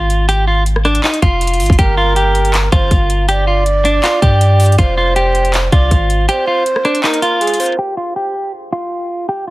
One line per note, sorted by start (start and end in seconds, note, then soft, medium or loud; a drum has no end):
0.00 1.00 G#1 loud
0.00 0.25 F4 medium
0.10 closed hi-hat medium
0.29 0.44 G4 loud
0.29 closed hi-hat medium
0.47 0.63 F4 medium
0.66 closed hi-hat medium
0.76 cross-stick medium
0.85 1.00 D4 medium
0.85 cross-stick medium
0.85 closed hi-hat soft
0.95 closed hi-hat medium
1.04 1.19 D#4 medium
1.04 clap loud
1.04 closed hi-hat soft
1.14 closed hi-hat medium
1.22 1.61 F1 loud
1.22 1.75 F4 medium
1.22 kick loud
1.22 closed hi-hat medium
1.41 closed hi-hat medium
1.47 closed hi-hat medium
1.54 closed hi-hat medium
1.60 1.69 G#1 loud
1.60 closed hi-hat medium
1.60 open hi-hat medium
1.66 1.78 F1 loud
1.66 kick loud
1.66 closed hi-hat medium
1.72 closed hi-hat medium
1.78 2.69 G1 loud
1.78 1.94 G4 medium
1.78 2.68 A#4 loud
1.78 kick loud
1.78 closed hi-hat medium
1.97 2.13 F4 medium
2.16 2.51 G4 medium
2.16 closed hi-hat medium
2.35 closed hi-hat medium
2.45 closed hi-hat medium
2.54 clap loud
2.54 closed hi-hat medium
2.72 2.90 G1 loud
2.72 3.25 F4 medium
2.72 2.90 C5 medium
2.72 kick medium
2.72 closed hi-hat medium
2.91 4.00 G1 loud
2.91 kick medium
2.91 closed hi-hat medium
3.10 closed hi-hat medium
3.29 3.44 G4 loud
3.29 4.75 D5 loud
3.29 closed hi-hat medium
3.47 3.63 F4 medium
3.66 closed hi-hat medium
3.85 4.00 D4 medium
3.85 closed hi-hat medium
4.03 4.19 F4 medium
4.03 clap loud
4.03 closed hi-hat medium
4.22 4.76 G2 loud
4.22 4.75 G4 medium
4.22 kick medium
4.22 closed hi-hat medium
4.41 closed hi-hat medium
4.60 closed hi-hat soft
4.60 open hi-hat medium
4.66 closed hi-hat medium
4.72 closed hi-hat medium
4.78 5.69 F1 loud
4.78 4.94 F4 medium
4.78 5.68 C5 loud
4.78 kick loud
4.78 closed hi-hat medium
4.97 5.13 F4 medium
5.16 5.51 G4 medium
5.16 closed hi-hat medium
5.35 closed hi-hat medium
5.45 closed hi-hat medium
5.54 clap loud
5.54 closed hi-hat medium
5.72 5.90 C2 loud
5.72 6.25 F4 medium
5.72 5.90 D5 medium
5.72 kick medium
5.72 closed hi-hat medium
5.91 6.27 G#1 loud
5.91 kick medium
5.91 closed hi-hat medium
6.10 closed hi-hat medium
6.29 6.44 G4 loud
6.29 7.00 C5 loud
6.29 closed hi-hat medium
6.47 6.63 F4 medium
6.66 closed hi-hat medium
6.76 cross-stick medium
6.85 7.00 D4 medium
6.85 cross-stick medium
6.85 closed hi-hat soft
6.95 closed hi-hat medium
7.04 7.19 D#4 medium
7.04 7.39 A#4 loud
7.04 clap loud
7.04 closed hi-hat soft
7.14 closed hi-hat medium
7.22 7.75 F4 medium
7.22 closed hi-hat medium
7.41 7.59 G#4 medium
7.41 closed hi-hat medium
7.47 closed hi-hat medium
7.54 closed hi-hat medium
7.60 7.78 C5 medium
7.60 closed hi-hat medium
7.60 open hi-hat medium
7.66 closed hi-hat medium
7.72 closed hi-hat soft
7.79 7.94 G4 medium
7.97 8.13 F4 medium
8.16 8.51 G4 medium
8.72 9.25 F4 medium
9.29 9.44 G4 loud